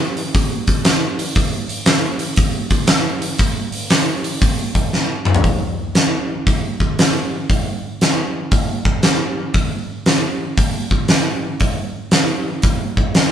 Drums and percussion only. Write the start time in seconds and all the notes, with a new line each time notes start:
0.17 open hi-hat
0.35 kick, open hi-hat
0.67 kick, open hi-hat
0.85 snare, open hi-hat
1.19 open hi-hat
1.35 kick, open hi-hat
1.69 open hi-hat
1.86 snare, open hi-hat
2.19 open hi-hat
2.36 kick, open hi-hat
2.70 kick, open hi-hat
2.87 snare, open hi-hat
3.22 open hi-hat
3.39 kick, open hi-hat
3.72 open hi-hat
3.90 snare, open hi-hat
4.24 open hi-hat
4.42 kick, open hi-hat
4.75 kick, open hi-hat
4.93 snare
5.25 mid tom
5.35 floor tom
5.44 kick, open hi-hat
5.95 snare, open hi-hat
6.47 kick, open hi-hat
6.80 kick
6.99 snare, open hi-hat
7.50 kick, open hi-hat
8.01 snare, open hi-hat
8.51 kick, open hi-hat
8.85 kick
9.03 snare, open hi-hat
9.54 kick, open hi-hat
10.06 snare, open hi-hat
10.57 kick, open hi-hat
10.91 kick
11.08 snare, open hi-hat
11.60 kick, open hi-hat
12.11 snare, open hi-hat
12.62 kick, open hi-hat
12.97 kick
13.15 snare, open hi-hat